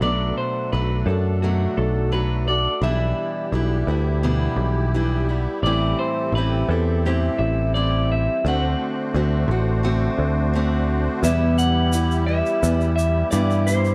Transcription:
0.00 0.31 B1 medium
0.00 0.72 B2 medium
0.00 0.72 F#3 medium
0.00 2.79 A3 medium
0.00 0.72 A3 medium
0.00 2.80 D4 medium
0.00 0.74 D4 medium
0.00 0.73 F#4 medium
0.00 2.80 A4 medium
0.00 0.37 D5 medium
0.38 0.70 C5 medium
0.72 1.02 B1 medium
0.72 1.08 F#3 soft
0.72 1.08 A3 medium
0.72 1.08 D4 medium
0.72 1.07 F#4 medium
0.72 1.09 B4 medium
1.06 1.66 F#2 medium
1.06 1.43 D4 soft
1.06 1.43 F#4 soft
1.06 1.42 A4 medium
1.10 1.43 A3 soft
1.42 2.13 B2 medium
1.42 2.11 F#3 medium
1.42 2.11 A3 medium
1.42 2.12 D4 medium
1.42 1.75 F#4 medium
1.42 2.13 F#4 medium
1.77 2.66 B1 medium
1.77 2.14 A4 medium
2.12 2.47 F#3 medium
2.12 2.48 A3 medium
2.12 2.48 D4 medium
2.12 2.47 F#4 medium
2.12 2.45 B4 medium
2.48 2.82 A3 soft
2.48 2.82 D4 soft
2.48 2.83 F#4 soft
2.48 2.80 D5 medium
2.82 3.12 B1 medium
2.82 3.53 B2 medium
2.82 3.52 E3 medium
2.82 3.53 G3 medium
2.82 5.61 B3 medium
2.82 3.52 D4 medium
2.82 5.61 E4 medium
2.82 3.55 E4 medium
2.82 5.61 G4 medium
2.82 4.20 E5 medium
3.52 3.82 B1 medium
3.52 3.88 E3 medium
3.52 3.89 G3 medium
3.52 3.88 D4 medium
3.52 3.87 E4 medium
3.87 4.47 D2 medium
3.87 4.23 G3 soft
3.87 4.23 D4 soft
3.87 4.23 E4 medium
4.23 4.93 B2 medium
4.23 4.93 E3 medium
4.23 4.94 G3 medium
4.23 4.94 D4 medium
4.23 4.94 E4 medium
4.56 5.46 B1 medium
4.94 5.29 E3 medium
4.94 5.29 G3 medium
4.94 5.28 D4 medium
4.94 5.28 E4 medium
5.29 5.65 G3 soft
5.29 5.64 D4 soft
5.29 5.64 E4 medium
5.63 5.93 A1 medium
5.63 6.35 A2 medium
5.63 6.35 E3 medium
5.63 6.35 G3 medium
5.63 8.42 C4 medium
5.63 6.37 C4 medium
5.63 8.41 G4 medium
5.63 8.41 A4 medium
5.63 5.98 D5 medium
5.67 6.35 E4 medium
5.99 6.35 C5 medium
6.32 6.63 A1 medium
6.32 6.70 E3 medium
6.32 6.71 B4 medium
6.37 6.71 G3 medium
6.37 6.71 C4 medium
6.37 6.70 E4 medium
6.69 7.28 E2 medium
6.69 7.05 G3 soft
6.69 7.05 C4 soft
6.69 7.05 E4 soft
6.69 7.06 A4 medium
7.05 7.75 A2 medium
7.05 7.74 E3 medium
7.05 7.74 G3 medium
7.05 7.75 C4 medium
7.05 7.75 E4 medium
7.05 7.38 G4 medium
7.38 8.27 A1 medium
7.38 7.74 E5 medium
7.74 8.45 E3 medium
7.74 8.45 G3 medium
7.74 8.45 C4 medium
7.74 8.46 E4 medium
7.74 8.10 D5 loud
8.12 8.47 E5 loud
8.45 8.74 D2 medium
8.45 9.13 D3 medium
8.45 9.15 A3 medium
8.45 9.15 C4 medium
8.45 11.22 D4 medium
8.45 11.22 F#4 medium
8.45 9.15 F#4 medium
8.45 11.22 C5 medium
8.45 9.82 F#5 medium
9.14 9.44 D2 medium
9.14 9.49 D3 medium
9.14 9.50 A3 medium
9.14 9.50 C4 medium
9.14 9.50 F#4 medium
9.48 10.07 A1 medium
9.48 9.83 C4 soft
9.48 9.83 F#4 medium
9.52 9.83 A3 soft
9.83 10.52 D3 medium
9.83 10.54 A3 medium
9.83 10.54 C4 medium
9.83 10.54 F#4 medium
10.18 11.07 D2 medium
10.54 11.23 D3 medium
10.54 11.24 A3 medium
10.54 11.24 C4 medium
10.54 11.25 F#4 medium
11.23 12.41 E2 medium
11.23 11.94 E2 medium
11.23 11.94 B2 medium
11.23 11.91 E3 medium
11.23 13.95 G3 medium
11.23 11.91 G3 medium
11.23 11.92 B3 medium
11.23 13.95 E4 medium
11.23 11.93 E4 medium
11.23 13.95 G4 medium
11.23 11.58 E5 loud
11.23 shaker medium
11.58 12.25 F#5 loud
11.58 shaker medium
11.92 12.28 E3 medium
11.92 12.27 G3 medium
11.92 12.27 B3 medium
11.92 12.26 E4 medium
11.92 shaker medium
12.11 shaker soft
12.26 12.63 E3 soft
12.26 12.64 G3 soft
12.26 12.64 B3 soft
12.26 12.63 E4 soft
12.26 12.95 E5 loud
12.46 shaker soft
12.63 13.22 E2 medium
12.63 13.31 E3 medium
12.63 13.32 G3 soft
12.63 13.33 B3 medium
12.63 13.33 E4 soft
12.63 shaker medium
12.81 shaker soft
12.96 13.30 E5 medium
12.96 shaker medium
13.31 13.92 G2 loud
13.31 13.68 E3 medium
13.31 13.68 G3 medium
13.31 13.69 B3 medium
13.31 13.67 E4 medium
13.31 13.69 D5 medium
13.31 shaker medium
13.50 shaker soft
13.67 13.95 E3 soft
13.67 13.95 G3 soft
13.67 13.95 E4 soft
13.67 13.95 C5 medium
13.67 shaker medium
13.85 shaker soft

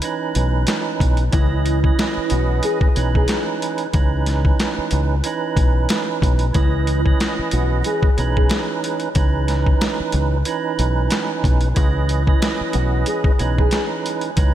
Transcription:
0.02 1.24 E3 loud
0.02 1.24 C#4 medium
0.02 1.25 D#4 medium
0.02 1.25 B4 loud
0.02 closed hi-hat medium
0.35 0.64 B1 loud
0.35 closed hi-hat medium
0.67 snare loud
0.67 closed hi-hat loud
1.00 1.29 B1 loud
1.00 kick medium
1.00 closed hi-hat medium
1.17 closed hi-hat soft
1.31 1.90 C#2 loud
1.31 1.79 E3 medium
1.31 1.79 C#4 medium
1.31 2.27 E4 loud
1.31 1.80 B4 loud
1.31 1.80 D#5 medium
1.31 kick loud
1.31 closed hi-hat medium
1.66 closed hi-hat medium
1.83 2.88 E3 medium
1.83 2.88 C#4 medium
1.83 2.89 B4 loud
1.83 2.89 D#5 medium
1.83 kick medium
1.99 snare loud
1.99 closed hi-hat medium
2.17 muted fingered electric bass stroke soft
2.30 2.60 B1 medium
2.30 2.60 F#4 medium
2.30 closed hi-hat medium
2.63 3.12 G#4 medium
2.63 closed hi-hat medium
2.81 kick loud
2.95 3.25 B1 medium
2.95 3.87 E3 medium
2.95 3.87 C#4 medium
2.95 3.88 D#4 medium
2.95 3.88 B4 loud
2.95 closed hi-hat medium
3.15 3.45 G#4 medium
3.15 kick medium
3.28 snare loud
3.28 closed hi-hat loud
3.62 closed hi-hat medium
3.78 closed hi-hat medium
3.93 4.51 C#2 loud
3.93 5.15 E3 medium
3.93 5.15 C#4 medium
3.93 5.16 D#4 medium
3.93 5.16 B4 loud
3.93 kick loud
3.93 closed hi-hat medium
4.26 snare soft
4.26 closed hi-hat medium
4.45 kick medium
4.59 snare loud
4.59 closed hi-hat medium
4.78 muted fingered electric bass stroke soft
4.91 5.21 C#2 medium
4.91 closed hi-hat medium
5.24 6.46 E3 loud
5.24 6.46 C#4 medium
5.24 6.47 D#4 medium
5.24 6.47 B4 loud
5.24 closed hi-hat medium
5.57 5.85 B1 medium
5.57 kick loud
5.57 closed hi-hat medium
5.89 snare loud
5.89 closed hi-hat loud
6.22 6.51 B1 loud
6.22 kick medium
6.22 closed hi-hat medium
6.39 closed hi-hat medium
6.52 7.12 C#2 loud
6.52 7.00 E3 loud
6.52 7.01 C#4 medium
6.52 7.49 E4 loud
6.52 7.02 B4 loud
6.52 7.01 D#5 medium
6.52 kick loud
6.52 closed hi-hat medium
6.87 closed hi-hat medium
7.04 8.09 E3 loud
7.04 8.10 C#4 medium
7.04 8.11 B4 loud
7.04 8.10 D#5 medium
7.04 kick medium
7.20 snare loud
7.20 closed hi-hat medium
7.39 muted fingered electric bass stroke soft
7.51 7.81 B1 loud
7.51 7.82 F#4 medium
7.51 closed hi-hat medium
7.84 8.34 G#4 medium
7.84 closed hi-hat medium
8.03 kick loud
8.17 8.47 B1 medium
8.17 9.09 E3 medium
8.17 9.09 C#4 medium
8.17 9.10 D#4 medium
8.17 9.10 B4 loud
8.17 closed hi-hat medium
8.36 8.66 G#4 medium
8.36 kick medium
8.50 snare loud
8.50 closed hi-hat medium
8.84 closed hi-hat medium
9.00 closed hi-hat medium
9.15 9.73 C#2 loud
9.15 10.37 E3 medium
9.15 10.37 C#4 medium
9.15 10.38 D#4 medium
9.15 10.38 B4 loud
9.15 kick loud
9.15 closed hi-hat medium
9.48 snare soft
9.48 closed hi-hat medium
9.67 kick medium
9.81 snare loud
9.81 closed hi-hat medium
10.00 muted fingered electric bass stroke soft
10.12 10.42 C#2 medium
10.12 closed hi-hat medium
10.45 11.67 E3 loud
10.45 11.68 C#4 medium
10.45 11.68 D#4 medium
10.45 11.69 B4 loud
10.45 closed hi-hat medium
10.79 11.07 B1 medium
10.79 closed hi-hat medium
11.11 snare loud
11.11 closed hi-hat loud
11.44 11.72 B1 loud
11.44 kick loud
11.44 closed hi-hat medium
11.61 closed hi-hat soft
11.74 12.33 C#2 loud
11.74 12.22 E3 loud
11.74 12.23 C#4 medium
11.74 12.70 E4 loud
11.74 12.24 B4 loud
11.74 12.23 D#5 medium
11.74 kick loud
11.74 closed hi-hat medium
12.09 closed hi-hat medium
12.26 13.31 E3 loud
12.26 13.32 C#4 medium
12.26 13.33 B4 loud
12.26 13.32 D#5 medium
12.26 kick medium
12.42 snare loud
12.42 closed hi-hat medium
12.61 muted fingered electric bass stroke soft
12.73 13.03 B1 loud
12.73 13.04 F#4 medium
12.73 closed hi-hat medium
13.06 13.55 G#4 medium
13.06 closed hi-hat medium
13.24 kick loud
13.38 13.68 B1 medium
13.38 14.30 E3 medium
13.38 14.31 C#4 medium
13.38 14.31 D#4 medium
13.38 14.32 B4 loud
13.38 closed hi-hat medium
13.59 13.88 G#4 medium
13.59 kick medium
13.71 snare loud
13.71 closed hi-hat loud
14.06 closed hi-hat medium
14.21 closed hi-hat medium
14.36 14.54 C#2 loud
14.36 14.54 E3 medium
14.36 14.54 C#4 medium
14.36 14.54 D#4 medium
14.36 14.54 B4 loud
14.36 kick loud
14.36 closed hi-hat loud

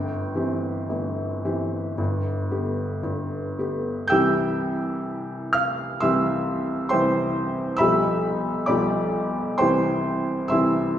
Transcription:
0.00 0.33 G1 soft
0.00 0.29 G2 medium
0.00 3.57 G5 medium
0.35 0.86 E3 soft
0.35 0.87 C4 soft
0.35 0.87 G4 soft
0.89 1.43 G1 soft
0.89 1.43 G2 soft
1.45 1.94 E3 soft
1.45 1.94 C4 soft
1.45 1.94 G4 soft
1.98 2.49 G1 soft
1.98 2.49 G2 medium
2.50 2.99 D3 soft
2.50 3.00 B3 soft
2.50 3.00 G4 soft
3.03 3.57 G1 soft
3.03 3.57 G2 soft
3.59 4.08 D3 soft
3.59 4.08 B3 soft
3.59 4.08 G4 soft
4.08 5.98 C2 medium
4.08 5.98 E3 medium
4.08 5.98 G4 medium
4.08 5.51 G5 medium
4.08 5.51 E6 medium
4.08 5.54 G6 loud
4.12 5.98 G3 medium
5.53 5.98 F5 medium
5.53 6.00 F6 loud
6.00 6.89 C2 medium
6.00 6.88 E3 medium
6.00 6.88 G3 medium
6.00 6.89 G4 medium
6.00 6.86 E5 medium
6.00 6.86 C6 medium
6.00 6.90 E6 loud
6.89 7.78 C2 medium
6.89 7.78 E3 medium
6.89 7.78 G3 medium
6.89 7.78 G4 medium
6.89 7.75 C5 medium
6.89 7.75 G5 medium
6.89 7.79 C6 loud
7.77 8.67 B1 medium
7.77 8.67 F3 medium
7.77 8.67 G4 medium
7.77 8.64 E5 medium
7.77 8.64 B5 medium
7.77 8.68 E6 loud
7.81 8.67 G3 medium
8.66 9.58 B1 medium
8.66 9.57 F3 medium
8.66 9.58 G3 medium
8.66 9.58 G4 medium
8.66 9.55 D5 medium
8.66 9.56 B5 medium
8.66 9.59 D6 medium
9.58 10.50 C2 medium
9.58 10.50 E3 medium
9.58 10.50 G3 medium
9.58 10.50 E4 medium
9.58 10.48 C5 medium
9.58 10.48 G5 medium
9.58 10.48 C6 loud
10.48 10.99 C2 medium
10.48 10.99 E3 medium
10.48 10.99 G3 medium
10.48 10.99 E4 medium
10.48 10.99 E5 medium
10.48 10.99 C6 medium
10.48 10.99 E6 medium

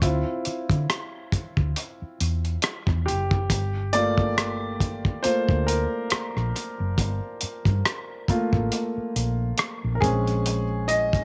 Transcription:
0.02 0.23 D2 medium
0.02 3.46 C4 soft
0.02 3.46 E4 medium
0.02 3.46 F4 soft
0.02 kick medium
0.02 closed hi-hat medium
0.45 muted fretless electric bass stroke soft
0.45 closed hi-hat medium
0.70 0.86 D3 medium
0.70 kick medium
0.70 closed hi-hat soft
0.90 cross-stick loud
0.90 closed hi-hat medium
1.32 muted fretless electric bass stroke soft
1.32 kick medium
1.32 closed hi-hat soft
1.57 1.73 D2 medium
1.57 kick medium
1.76 closed hi-hat medium
2.02 muted fretless electric bass stroke soft
2.20 2.56 E2 medium
2.20 closed hi-hat medium
2.45 closed hi-hat soft
2.62 cross-stick loud
2.62 closed hi-hat medium
2.87 3.09 E2 medium
2.87 kick medium
2.87 cross-stick soft
3.06 3.50 F#1 medium
3.06 3.96 G4 medium
3.06 cross-stick soft
3.06 closed hi-hat soft
3.31 kick medium
3.50 5.01 G1 medium
3.50 kick loud
3.50 closed hi-hat medium
3.93 5.20 A3 medium
3.93 5.20 A#3 soft
3.93 5.21 F4 medium
3.93 4.76 D5 loud
3.93 closed hi-hat medium
4.18 kick medium
4.38 cross-stick loud
4.38 closed hi-hat medium
4.80 kick medium
4.80 closed hi-hat soft
5.05 kick medium
5.23 5.63 A3 soft
5.23 5.63 A#3 soft
5.23 5.64 F4 soft
5.23 5.68 C5 medium
5.23 muted fretless electric bass stroke soft
5.23 closed hi-hat medium
5.49 5.85 D2 medium
5.49 kick medium
5.67 6.50 A#4 medium
5.67 closed hi-hat medium
6.10 muted fretless electric bass stroke soft
6.10 cross-stick medium
6.10 closed hi-hat medium
6.36 6.51 A#1 medium
6.36 cross-stick soft
6.56 cross-stick soft
6.56 closed hi-hat medium
6.80 6.98 F#1 medium
6.98 7.19 G1 medium
6.98 kick medium
6.98 closed hi-hat medium
7.41 muted fretless electric bass stroke soft
7.41 closed hi-hat medium
7.65 7.81 G2 medium
7.65 kick medium
7.65 closed hi-hat soft
7.85 cross-stick loud
7.85 closed hi-hat medium
8.28 9.55 A3 medium
8.28 9.55 A#3 soft
8.28 9.55 F4 medium
8.28 muted fretless electric bass stroke soft
8.28 kick medium
8.28 closed hi-hat soft
8.53 8.69 A1 medium
8.53 kick medium
8.72 closed hi-hat medium
8.97 muted fretless electric bass stroke soft
9.16 9.51 A#1 medium
9.16 closed hi-hat medium
9.58 cross-stick medium
9.58 closed hi-hat medium
9.84 9.99 A#1 medium
9.95 10.02 A#4 medium
10.01 11.24 A#1 medium
10.01 10.62 G#3 soft
10.01 10.62 C4 soft
10.01 10.63 C#4 medium
10.01 10.84 G#4 medium
10.01 kick medium
10.01 closed hi-hat medium
10.27 closed hi-hat soft
10.46 closed hi-hat medium
10.88 11.24 D#5 loud
10.88 closed hi-hat medium
11.13 kick medium
11.13 closed hi-hat soft

